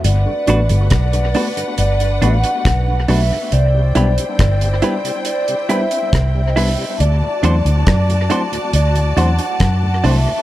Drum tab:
HH |x-xxxxoxxxxxx-o-|x-xxxxxxxxxxx-o-|x-xxxxxxxxxxx-o-|
SD |----r-------r---|----r-------r---|----r-------r---|
BD |----o-------o---|----o-------o---|----o-------o---|